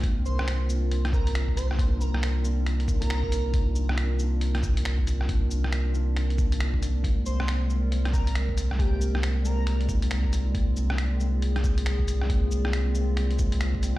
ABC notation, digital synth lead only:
X:1
M:4/4
L:1/16
Q:"Swing 16ths" 1/4=137
K:Cm
V:1 name="Digital synth lead"
z2 c2 z6 B B z2 c2 | z2 B B z6 z B4- B- | B z12 z3 | z16 |
z2 c2 z6 B B z4 | G2 z4 B3 z6 z | z16 | z16 |]